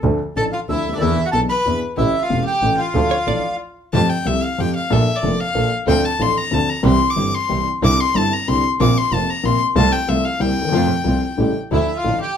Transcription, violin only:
0.37 A4
0.53 F4
0.70 E4
0.95 D4
1.01 E4
1.26 F#4
1.33 A4
1.49 B4
1.97 E4
2.21 F4
2.45 G4
2.78 F4
3.94 A5
4.10 G5
4.27 E5
4.43 F5
4.60 G5
4.76 F5
4.93 E5
5.16 D5
5.41 F5
5.88 G5
6.05 A5
6.22 C6
6.32 C6
6.37 A#5
6.54 A5
6.70 A#5
6.86 C6
7.10 D6
7.35 C6
7.84 D6
8.00 C6
8.17 A5
8.33 A#5
8.48 C6
8.81 D6
8.98 C6
9.14 A5
9.30 A#5
9.45 C6
9.77 A5
9.93 G5
10.09 E5
10.25 F5
10.41 G5
11.72 E4
11.97 F4
12.21 G4

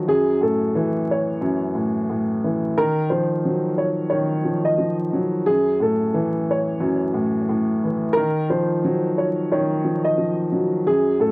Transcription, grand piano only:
0.08 F#2
0.41 A2
0.75 E3
1.41 F#2
1.75 A2
2.10 A2
2.44 E3
2.78 D#3
3.11 F3
3.45 F#3
4.12 D#3
4.45 F3
4.78 F3
5.13 F#3
5.47 F#2
5.80 A2
6.14 E3
6.80 F#2
7.14 A2
7.49 A2
7.84 E3
8.17 D#3
8.50 F3
8.84 F#3
9.51 D#3
9.84 F3
10.18 F3
10.52 F#3
10.87 F#2
11.20 A2

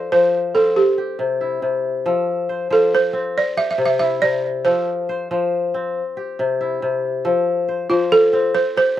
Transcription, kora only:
Already playing: F3 A4 C5
0.12 F3 C5
0.55 C4
0.98 G4
1.19 C3
1.41 E4
1.62 C3
2.06 F3 A4
2.49 C5
2.70 F3 C5
3.13 C4
3.57 G4
3.78 C3
4.00 E4
4.22 C3
4.65 F3 A4
5.09 C5
5.31 F3 C5
5.74 C4
6.17 G4
6.39 C3
6.61 E4
6.82 C3
7.25 F3 A4
7.68 C5
7.90 F3 C5
8.33 C4
8.77 G4

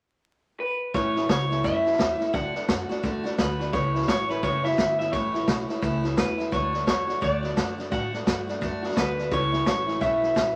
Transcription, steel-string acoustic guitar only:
0.94 A2 E3 A3 C#4 E4
1.15 A3 C#4 E4
1.28 E3 A3 C#4
1.50 A3 C#4 E4
1.63 A2 E3 A3 C#4 E4
1.85 A3 C#4 E4
1.98 E3 A3 C#4 E4
2.19 A3 C#4 E4
2.33 D3 A3 D4 F#4
2.54 A3 D4 F#4
2.68 D3 A3 D4 F#4
2.89 A3 D4 F#4
3.03 D3 A3 D4 F#4
3.24 A3 D4 F#4
3.38 D3 A3 D4 F#4
3.59 A3 D4 F#4
3.72 A2 E3 A3 C#4 E4
3.94 A3 C#4 E4
4.07 E3 A3 E4
4.29 A3 C#4 E4
4.43 A2 E3 A3 C#4 E4
4.64 A3 C#4 E4
4.77 E3 A3 C#4 E4
4.99 A3 C#4 E4
5.13 A2 E3 A3 C#4 E4
5.34 A3 C#4 E4
5.47 E3 A3 C#4 E4
5.68 A3 C#4 E4
5.82 A2 E3 A3 C#4 E4
6.03 A3 C#4 E4
6.17 E3 A3 C#4 E4
6.38 A3 C#4 E4
6.52 D3 A3 D4 F#4
6.73 A3 D4 F#4
6.86 D3 A3 D4 F#4
7.07 A3 D4 F#4
7.21 D3 A3 D4 F#4
7.43 A3 D4 F#4
7.56 D3 A3 D4 F#4
7.78 A3 D4 F#4
7.91 D3 A3 D4 F#4
8.13 A3 D4 F#4
8.26 D3 A3 D4 F#4
8.47 A3 D4 F#4
8.61 D3 A3 D4 F#4
8.82 A3 D4 F#4
8.96 D3 A3 D4 F#4
9.18 A3 D4 F#4
9.31 A2 E3 A3 C#4 E4
9.52 A3 C#4 E4
9.65 E3 A3 C#4 E4
9.87 A3 C#4 E4
10.01 A2 E3 A3 C#4 E4
10.21 A3 C#4 E4
10.35 E3 A3 C#4 E4

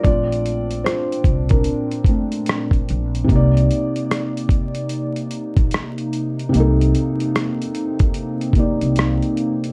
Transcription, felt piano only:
0.04 A3 C4 D4 F4 D5
0.84 F4 C5
1.50 D4 A#4
2.08 A3 C4 D4
3.24 C3 A#3
3.32 D#4 D5
6.49 C3 A#3
6.57 D#4 A4
8.54 C3 A#3 D#4
8.59 D5

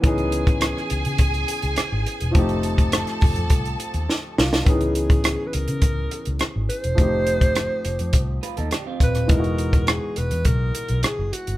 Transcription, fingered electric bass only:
0.04 C#2
0.91 C#2
1.06 C#3
1.19 C#2
1.63 C#2
1.78 muted fingered electric bass stroke
1.92 G#1
2.22 E1
2.36 F1
3.23 F1
3.37 F2
3.51 C2
3.94 D#2
4.38 C2
4.67 C#2
5.55 C#2
5.69 C#3
5.83 C#2
6.27 C#2
6.56 G#1
6.85 E1
6.99 F1
7.85 F1
8.00 F2
8.14 C2
8.58 D#2
9.01 D#1
9.30 E1
10.18 E1
10.32 E2
10.46 B1
10.90 B1
11.04 muted fingered electric bass stroke
11.19 F#1
11.48 G1

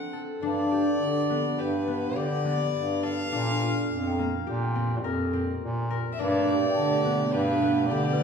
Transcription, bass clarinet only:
0.42 G2
1.00 D3
1.59 G2
2.16 D3
2.74 G2
3.33 A#2
3.90 F2
4.48 A#2
5.04 F2
5.62 A#2
6.20 G2
6.77 D3
7.34 G2
7.91 D3

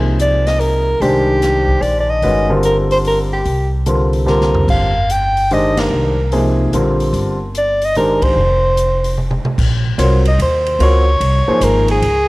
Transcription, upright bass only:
Already playing: C2
1.00 C2
1.81 A#1
2.22 G1
3.45 C2
4.68 G1
5.90 C2
6.73 A#1
7.13 G1
8.36 F1
9.44 muted upright bass stroke
9.58 A#1
9.98 C2
10.39 D#2
10.79 C#2
11.20 C2
11.48 muted upright bass stroke
11.61 G#1
12.02 C#2

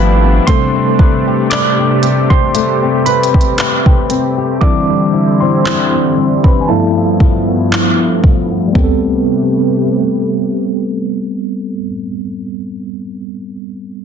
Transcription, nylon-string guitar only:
Already playing: G2 F3 B3 E4
0.24 B3
0.48 A3 B4
0.76 C4
1.00 B4
1.27 G4
1.51 B4
1.79 G4
2.03 C4
2.31 G4
2.55 A3 B4
2.83 C4
3.06 B4
3.34 G4
3.58 B4
3.86 G4
4.10 C4
4.38 G4
4.62 D3 E4
4.89 G3
5.13 E4
5.41 C4
5.65 E4
5.93 C4
6.17 G3
6.45 C4
6.69 G2 E4
6.96 F3
7.20 E4
7.48 B3
7.72 E4
8.00 B3
8.24 F3
8.52 B3
8.73 A3 C4
8.78 G4 B4

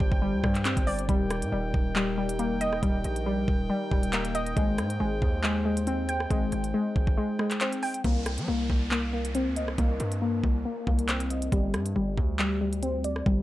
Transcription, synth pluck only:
Already playing: G3 C4 D5
0.22 G3
0.44 G3
0.65 C4
0.87 D5
1.09 G3
1.52 G3
1.96 G3
2.17 G3
2.39 A#3
2.61 D#5
2.83 G3
3.26 G3
3.70 G3
3.91 G3
4.13 A#3
4.35 D#5
4.57 G#3
5.00 G#3
5.44 G#3
5.65 G#3
5.87 C4
6.09 G5
6.31 G#3
6.74 G#3
7.18 G#3
7.39 G#3
7.61 C4
7.83 G5
8.04 A#3
8.48 A#3
8.91 A#3
9.13 A#3
9.35 C4
9.57 D#5
9.78 A#3
10.22 A#3
10.65 A#3
10.87 A#3
11.09 C4
11.31 D#5
11.52 G3
11.96 G3
12.39 G3
12.61 G3
12.83 C4
13.04 D5
13.26 G3

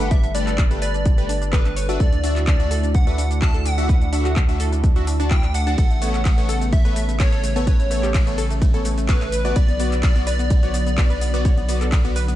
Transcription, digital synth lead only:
Already playing: F#5
0.11 E5
0.35 D5
0.82 D5
1.53 B4
2.00 D5
2.48 D5
2.95 F#5
3.42 A5
3.66 F#5
5.31 G5
5.55 F#5
5.78 F#5
6.73 E5
7.20 C#5
7.67 C#5
9.09 B4
9.56 D5
10.03 D5
10.27 D5

